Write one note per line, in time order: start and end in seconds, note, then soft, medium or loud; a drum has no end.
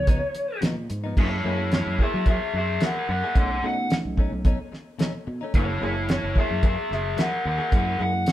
0.00 0.19 C#2 medium
0.00 0.59 C#5 medium
0.07 0.22 C#3 medium
0.07 0.22 F3 medium
0.07 0.22 B3 medium
0.07 0.21 D#4 loud
0.07 kick loud
0.07 closed hi-hat medium
0.22 muted clean electric guitar stroke medium
0.35 muted clean electric guitar stroke soft
0.35 closed hi-hat medium
0.61 0.87 A#2 medium
0.61 0.76 C#3 medium
0.61 0.77 F3 medium
0.61 0.76 B3 medium
0.61 0.75 D#4 medium
0.61 snare loud
0.61 closed hi-hat medium
0.77 muted clean electric guitar stroke soft
0.90 1.15 G#2 medium
0.90 muted clean electric guitar stroke soft
0.90 closed hi-hat medium
1.04 1.17 F3 soft
1.04 1.17 B3 soft
1.04 1.17 D#4 medium
1.17 1.41 F#2 loud
1.17 1.32 F#3 medium
1.17 1.36 G#3 medium
1.17 1.37 A#3 medium
1.17 1.32 A#3 medium
1.17 1.37 E4 medium
1.17 1.31 E4 medium
1.17 1.46 E4 medium
1.17 1.30 G#4 medium
1.17 1.45 C#5 medium
1.17 kick loud
1.17 crash medium
1.31 muted clean electric guitar stroke soft
1.44 1.81 F#2 medium
1.44 1.59 F#3 medium
1.44 2.20 G#3 medium
1.44 2.20 A#3 medium
1.44 1.59 A#3 medium
1.44 2.20 E4 medium
1.44 1.58 E4 medium
1.44 1.71 E4 medium
1.44 1.57 G#4 medium
1.48 1.73 C#5 medium
1.59 muted clean electric guitar stroke soft
1.71 1.99 E4 medium
1.71 2.00 C#5 medium
1.71 muted clean electric guitar stroke soft
1.71 snare loud
1.71 closed hi-hat medium
1.86 1.97 F#2 medium
1.98 2.13 F#3 medium
1.98 2.13 A#3 medium
1.98 2.13 E4 soft
1.98 2.12 G#4 medium
1.98 2.26 G#4 medium
1.98 kick medium
2.03 2.28 E5 medium
2.13 2.38 F#3 medium
2.13 muted clean electric guitar stroke soft
2.26 2.41 F#3 medium
2.26 2.41 A#3 medium
2.26 2.41 E4 medium
2.26 2.40 G#4 medium
2.26 2.54 G#4 medium
2.26 kick medium
2.26 closed hi-hat medium
2.30 2.55 E5 medium
2.41 muted clean electric guitar stroke soft
2.53 2.77 F#2 medium
2.53 2.81 G#4 medium
2.53 muted clean electric guitar stroke soft
2.58 2.82 E5 medium
2.81 2.96 F#3 medium
2.81 2.96 A#3 medium
2.81 2.95 E4 medium
2.81 2.94 G#4 medium
2.81 3.08 A#4 medium
2.81 snare loud
2.81 closed hi-hat medium
2.85 3.10 F#5 medium
2.95 muted clean electric guitar stroke soft
3.09 3.21 F#2 medium
3.09 3.35 A#4 medium
3.09 3.36 F#5 medium
3.09 muted clean electric guitar stroke soft
3.24 3.37 A#3 soft
3.24 3.37 E4 soft
3.24 3.36 G#4 soft
3.35 3.59 B1 medium
3.35 3.50 B2 medium
3.35 3.55 A3 medium
3.35 3.51 A3 medium
3.35 3.55 C#4 medium
3.35 3.50 C#4 medium
3.35 3.55 D#4 medium
3.35 3.50 D#4 medium
3.35 3.63 A4 medium
3.35 3.64 F#5 medium
3.35 kick loud
3.35 closed hi-hat medium
3.51 muted clean electric guitar stroke soft
3.62 3.77 B2 medium
3.62 3.87 B2 medium
3.62 4.38 A3 medium
3.62 3.78 A3 medium
3.62 4.38 C#4 medium
3.62 3.77 C#4 medium
3.62 4.38 D#4 medium
3.62 3.77 D#4 medium
3.62 3.91 F#5 medium
3.78 muted clean electric guitar stroke soft
3.90 muted clean electric guitar stroke soft
3.90 snare loud
3.90 closed hi-hat medium
4.05 4.29 B1 medium
4.17 4.32 B2 medium
4.17 4.32 A3 medium
4.17 4.32 C#4 medium
4.17 4.31 D#4 medium
4.17 kick medium
4.32 4.56 B1 medium
4.32 muted clean electric guitar stroke soft
4.45 4.59 B2 medium
4.45 4.59 A3 medium
4.45 4.58 C#4 medium
4.45 4.58 D#4 loud
4.45 kick loud
4.45 closed hi-hat medium
4.59 muted clean electric guitar stroke soft
4.72 muted clean electric guitar stroke soft
4.72 snare soft
4.99 5.14 B2 medium
4.99 5.14 A3 medium
4.99 5.13 C#4 medium
4.99 5.13 D#4 medium
4.99 snare loud
4.99 closed hi-hat medium
5.14 muted clean electric guitar stroke medium
5.27 5.40 B2 medium
5.27 muted clean electric guitar stroke soft
5.41 5.54 A3 soft
5.41 5.54 C#4 medium
5.41 5.54 D#4 medium
5.54 5.78 F#1 loud
5.54 5.69 F#3 medium
5.54 5.73 G#3 medium
5.54 5.73 A#3 medium
5.54 5.69 A#3 medium
5.54 5.74 E4 medium
5.54 5.69 E4 medium
5.54 5.83 E4 medium
5.54 5.68 G#4 medium
5.54 5.82 C#5 medium
5.54 kick medium
5.54 closed hi-hat medium
5.69 muted clean electric guitar stroke soft
5.81 6.18 F#1 medium
5.81 5.96 F#3 medium
5.81 6.56 G#3 medium
5.81 6.57 A#3 medium
5.81 5.96 A#3 medium
5.81 6.57 E4 medium
5.81 5.95 E4 medium
5.81 6.08 E4 medium
5.81 5.94 G#4 medium
5.85 6.10 C#5 medium
5.96 muted clean electric guitar stroke soft
6.08 6.36 E4 medium
6.08 6.37 C#5 medium
6.08 muted clean electric guitar stroke soft
6.08 snare loud
6.08 closed hi-hat medium
6.23 6.35 F#1 medium
6.35 6.51 F#3 medium
6.35 6.51 A#3 medium
6.35 6.50 E4 medium
6.35 6.50 G#4 medium
6.35 6.63 G#4 medium
6.35 kick medium
6.40 6.65 E5 medium
6.51 6.75 F#2 medium
6.51 muted clean electric guitar stroke soft
6.63 6.78 F#3 medium
6.63 6.78 A#3 medium
6.63 6.77 E4 medium
6.63 6.76 G#4 medium
6.63 6.90 G#4 medium
6.63 kick loud
6.63 closed hi-hat medium
6.67 6.92 E5 medium
6.77 muted clean electric guitar stroke soft
6.90 7.15 F#1 medium
6.90 7.18 G#4 medium
6.90 muted clean electric guitar stroke soft
6.90 snare soft
6.94 7.19 E5 medium
7.17 7.32 F#3 medium
7.17 7.31 A#3 medium
7.17 7.31 E4 medium
7.17 7.30 G#4 medium
7.17 7.45 A#4 medium
7.17 snare loud
7.17 closed hi-hat medium
7.21 7.46 F#5 medium
7.31 muted clean electric guitar stroke soft
7.44 7.58 D#2 medium
7.44 7.72 A#4 medium
7.44 muted clean electric guitar stroke soft
7.48 7.73 F#5 medium
7.58 7.71 A#3 soft
7.58 7.71 E4 soft
7.58 7.72 G#4 soft
7.71 7.97 F#2 medium
7.71 7.87 F#3 medium
7.71 7.92 G#3 medium
7.71 7.86 A#3 medium
7.71 7.92 A#3 medium
7.71 7.92 E4 medium
7.71 7.85 E4 medium
7.71 7.85 G#4 medium
7.71 kick loud
7.71 closed hi-hat medium
7.76 8.00 A#4 medium
7.76 8.01 F#5 medium
7.86 muted clean electric guitar stroke soft
7.98 8.24 F#2 medium
7.98 8.14 F#3 medium
7.98 8.32 G#3 medium
7.98 8.14 A#3 medium
7.98 8.32 A#3 medium
7.98 8.32 E4 medium
7.98 8.13 E4 medium
7.98 8.13 G#4 medium
8.03 8.28 F#5 medium
8.14 muted clean electric guitar stroke soft
8.26 muted clean electric guitar stroke soft
8.26 snare loud
8.26 closed hi-hat medium